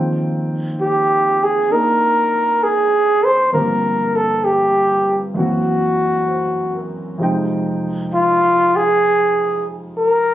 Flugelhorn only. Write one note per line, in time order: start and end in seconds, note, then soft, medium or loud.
0.81 1.45 G4 medium
1.44 1.74 G#4 medium
1.72 2.65 A#4 medium
2.63 3.27 G#4 medium
3.25 3.53 C5 medium
3.53 4.17 A#4 medium
4.16 4.46 A4 medium
4.45 5.20 G4 medium
5.37 6.87 F#4 medium
8.14 8.78 F4 medium
8.76 9.67 G#4 medium
9.98 10.34 A#4 medium